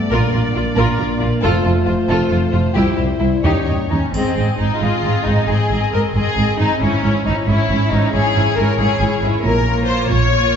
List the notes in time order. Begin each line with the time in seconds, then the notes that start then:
Already playing: D5
0.10 A#1 A#2 A#3 D4 F4 A#4
0.32 A#1 A#2 F4 A#4
0.55 A#1 A#2 F4
0.76 A#1 A#2 F4 A#4
0.97 A#1 A#2 F4 A#4
1.19 A#1 A#2 F4
1.42 F1 F2 A3 F4 A4 C5
1.65 F1 F2 F4 A4
1.85 F1 F2 F4
2.09 F1 F2 F4 A4
2.29 F1 F2 F4 A4
2.52 F1 F2 F4
2.73 C2 G3 E4 G4
2.97 C2 E4 G4
3.19 C2 E4
3.43 D#2 C#4 D#4 G4 C#5
3.66 D#2 D#4 G4
3.90 D#2 C#4 D#4
4.14 G#1 G#2 C4 G#4 D#5, triangle
4.36 G#1 G#2 C4 G#4 D#5
4.58 G#1 G#2 C4 D#4 G#4 D#5
4.80 G#1 G#2 C4 F4 G#4 D#5
5.03 G#1 G#2 C4 G#4 D#5
5.25 G#1 G#2 C4 D#4 G#4 D#5
5.48 G#1 G#2 C4 G#4 D#5
5.70 G#1 G#2 C4 G#4 D#5
5.92 G#1 G#2 C4 G#4 A#4 D#5
6.14 G#1 G#2 C4 G#4 D#5
6.36 G#1 G#2 C4 G#4 D#5
6.57 G#1 G#2 C4 D#4 G#4 D#5
6.80 G#1 G#2 C#4 E4 C#5
7.03 G#1 G#2 C#4 E4 C#5
7.25 G#1 G#2 C#4 D#4 E4 C#5
7.47 G#1 G#2 C#4 E4 C#5
7.69 G#1 G#2 C#4 E4 C#5
7.91 G#1 G#2 C#4 D#4 E4 C#5
8.13 G#1 G#2 C#4 E4 G#4 C#5
8.35 G#1 G#2 C#4 E4 C#5
8.57 G#1 G#2 C#4 E4 A#4 C#5
8.78 G#1 G#2 C#4 E4 G#4 C#5
9.00 G#1 G#2 C#4 E4 C#5
9.22 G#1 G#2 C#4 E4 C#5
9.44 A#1 A#2 A#4
9.67 A#3 F4 C#5
9.86 C5
10.09 A#1 A#2 C#5
10.31 A#3 F4 C#5